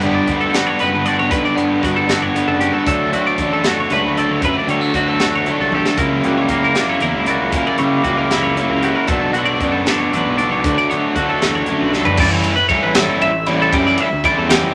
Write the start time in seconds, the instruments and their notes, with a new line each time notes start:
Already playing: clean electric guitar G2, overdriven electric guitar G2 D3
0.01 picked electric bass G1, overdriven electric guitar B3 D4, clean electric guitar G4, closed hi-hat
0.05 overdriven electric guitar G3, clean electric guitar B3
0.15 clean electric guitar D5
0.27 picked electric bass D2, overdriven electric guitar D3 G3 B3, kick, closed hi-hat
0.33 overdriven electric guitar D4
0.40 clean electric guitar A4
0.54 overdriven electric guitar G3 B3 D4, clean electric guitar F#4, snare, closed hi-hat
0.67 clean electric guitar C#5
0.79 picked electric bass F#1, overdriven electric guitar D3 G3, clean electric guitar B3 B4, closed hi-hat
0.83 overdriven electric guitar B3 D4
0.95 picked electric bass G1
1.05 overdriven electric guitar G3 B3 D4, clean electric guitar F#4 D5, closed hi-hat
1.19 picked electric bass G1, clean electric guitar C#5
1.30 picked electric bass B1, overdriven electric guitar G2 D3 G3 B3 D4, clean electric guitar G2 B4, kick, closed hi-hat
1.45 clean electric guitar D5
1.56 picked electric bass G2, clean electric guitar B3 C#5, overdriven electric guitar B3 D4, closed hi-hat
1.60 overdriven electric guitar G3
1.82 picked electric bass G1, overdriven electric guitar D3 G3 B3, clean electric guitar F#4, kick, closed hi-hat
1.86 overdriven electric guitar D4
1.96 clean electric guitar A4
2.08 overdriven electric guitar G3 B3 D4, clean electric guitar F#4, snare, closed hi-hat
2.22 clean electric guitar C#5
2.34 overdriven electric guitar D3 G3 B3 D4, clean electric guitar B3, closed hi-hat
2.47 picked electric bass F#1, clean electric guitar A4
2.60 overdriven electric guitar G3 B3 D4, clean electric guitar F#4 G4, closed hi-hat
2.73 clean electric guitar A4
2.86 clean electric guitar D2 A4, picked electric bass D2, overdriven electric guitar D3 F#3 A3 D4, kick, closed hi-hat
3.13 picked electric bass D2, clean electric guitar A3 F#4, overdriven electric guitar A3 D4, closed hi-hat
3.17 overdriven electric guitar F#3
3.27 clean electric guitar D5
3.38 picked electric bass A1, overdriven electric guitar D3 F#3 A3, kick, closed hi-hat
3.43 overdriven electric guitar D4
3.53 clean electric guitar A4
3.64 overdriven electric guitar A3 D4, clean electric guitar F#4, snare, closed hi-hat
3.69 overdriven electric guitar F#3
3.80 clean electric guitar C#5
3.90 picked electric bass C#2, overdriven electric guitar D3 F#3 A3 D4, clean electric guitar A3 B4, closed hi-hat
4.04 picked electric bass D2
4.17 overdriven electric guitar F#3 A3 D4, clean electric guitar A4 D5, closed hi-hat
4.30 picked electric bass D2, clean electric guitar C#5
4.42 clean electric guitar D2 B4, picked electric bass F#2, overdriven electric guitar D3 F#3 A3, kick, closed hi-hat
4.46 overdriven electric guitar D4
4.58 clean electric guitar D5
4.68 picked electric bass D3, overdriven electric guitar F#3 A3 D4, clean electric guitar G3 C#5, closed hi-hat
4.81 clean electric guitar A3
4.94 picked electric bass D2, overdriven electric guitar D3 F#3 A3, clean electric guitar F#4, kick, closed hi-hat
4.99 overdriven electric guitar D4
5.08 clean electric guitar A4
5.20 overdriven electric guitar D4, clean electric guitar F#4, snare, closed hi-hat
5.24 overdriven electric guitar F#3 A3
5.35 clean electric guitar C#5
5.46 overdriven electric guitar D3 F#3 A3, clean electric guitar A3, closed hi-hat
5.50 overdriven electric guitar D4
5.59 picked electric bass C2, clean electric guitar A4
5.72 overdriven electric guitar A3 D4, clean electric guitar G4 A4, high tom
5.76 overdriven electric guitar F#3
5.86 clean electric guitar A4, snare
5.97 picked electric bass C#2, overdriven electric guitar C#3 F#3 A#3, clean electric guitar C#3 A#4, kick, closed hi-hat
6.02 overdriven electric guitar E4
6.23 picked electric bass C#2, overdriven electric guitar F#3 A#3 E4, clean electric guitar G3 F#4, closed hi-hat
6.38 clean electric guitar C#5
6.48 picked electric bass C#2, overdriven electric guitar C#3 F#3 A#3, clean electric guitar A#3, kick, closed hi-hat
6.53 overdriven electric guitar E4
6.64 clean electric guitar A#4
6.75 overdriven electric guitar A#3 E4, clean electric guitar D4, snare, closed hi-hat
6.79 overdriven electric guitar F#3
6.89 clean electric guitar E4 C#5
7.00 picked electric bass E2, overdriven electric guitar C#3 F#3 A#3 E4, clean electric guitar A#4, closed hi-hat
7.15 picked electric bass C#2
7.26 overdriven electric guitar F#3 A#3 E4, clean electric guitar F#4 D5, closed hi-hat
7.41 picked electric bass C#2, clean electric guitar C#5
7.52 picked electric bass A#2, overdriven electric guitar C#3 F#3 A#3 E4, clean electric guitar C#3 A#4, kick, closed hi-hat
7.67 clean electric guitar D5
7.78 picked electric bass C#3, overdriven electric guitar A#3 E4, clean electric guitar C#5, closed hi-hat
7.82 overdriven electric guitar F#3, clean electric guitar G3
8.04 picked electric bass C#2, overdriven electric guitar C#3 F#3 A#3 E4, clean electric guitar F#4, kick, closed hi-hat
8.09 clean electric guitar A#3
8.17 clean electric guitar A#4
8.30 overdriven electric guitar F#3 A#3 E4, clean electric guitar E4, snare, closed hi-hat
8.43 clean electric guitar C#5
8.55 overdriven electric guitar C#3 F#3 A#3 E4, closed hi-hat
8.70 picked electric bass C#2, clean electric guitar A#4
8.82 overdriven electric guitar F#3 A#3 E4, clean electric guitar F#4 G4, closed hi-hat
8.95 clean electric guitar A#4
9.07 picked electric bass B1, overdriven electric guitar B2 F#3 B3 D4, clean electric guitar B2 A4, kick, closed hi-hat
9.33 picked electric bass B1, overdriven electric guitar B3 D4, clean electric guitar F#4, closed hi-hat
9.37 overdriven electric guitar F#3, clean electric guitar A3
9.45 clean electric guitar D5
9.60 picked electric bass F#2, overdriven electric guitar B2 F#3 B3, clean electric guitar B3, kick, closed hi-hat
9.65 overdriven electric guitar D4
9.72 clean electric guitar A4
9.86 overdriven electric guitar B3 D4, clean electric guitar D4, snare, closed hi-hat
9.91 overdriven electric guitar F#3
9.98 clean electric guitar C#5
10.11 picked electric bass A1, overdriven electric guitar B2 F#3, clean electric guitar A3 B4, closed hi-hat
10.15 overdriven electric guitar B3 D4
10.27 picked electric bass B1
10.37 overdriven electric guitar B3 D4, clean electric guitar D4 D5, closed hi-hat
10.43 overdriven electric guitar F#3
10.51 picked electric bass B1, clean electric guitar C#5
10.63 clean electric guitar D2 B4, picked electric bass D2, overdriven electric guitar D3 F#3, kick, closed hi-hat
10.67 overdriven electric guitar A3 D4
10.78 clean electric guitar D5
10.90 picked electric bass D3, overdriven electric guitar F#3 A3 D4, clean electric guitar B3 C#5, closed hi-hat
11.15 picked electric bass D2, overdriven electric guitar D3 F#3 A3 D4, clean electric guitar F#4, kick, closed hi-hat
11.29 clean electric guitar A4
11.41 clean electric guitar E2, overdriven electric guitar F#3 A3 D4, snare, closed hi-hat
11.55 clean electric guitar C#5
11.66 clean electric guitar F#2, overdriven electric guitar D3 F#3, closed hi-hat
11.71 overdriven electric guitar A3 D4
11.81 picked electric bass B1, clean electric guitar B4
11.92 clean electric guitar G2 A4, overdriven electric guitar A3 D4, snare
11.97 overdriven electric guitar F#3
12.05 clean electric guitar B4, floor tom
12.17 picked electric bass A1, overdriven electric guitar E3 G3 C#4 E4, clean electric guitar D5, kick, crash
12.31 clean electric guitar C#5
12.44 ride
12.56 picked electric bass A2, clean electric guitar B4
12.69 overdriven electric guitar E3 G3 C#4 E4, clean electric guitar C#5, kick, ride
12.83 picked electric bass A1, clean electric guitar B4
12.95 overdriven electric guitar E3 G3 C#4 E4, clean electric guitar A4, snare, ride
13.21 picked electric bass A1, clean electric guitar E5, ride
13.46 picked electric bass A1, overdriven electric guitar E3 G3 C#4 E4, clean electric guitar D5, ride
13.62 clean electric guitar A4
13.72 picked electric bass F#2, overdriven electric guitar E3 G3 C#4 E4, clean electric guitar G4, kick, ride
13.87 clean electric guitar D5
13.98 clean electric guitar E5, ride
14.13 picked electric bass D2
14.24 overdriven electric guitar E3 G3 C#4 E4, clean electric guitar D5, kick, ride
14.38 picked electric bass E2, clean electric guitar A4
14.49 overdriven electric guitar E3 G3 C#4 E4, clean electric guitar G4, snare, ride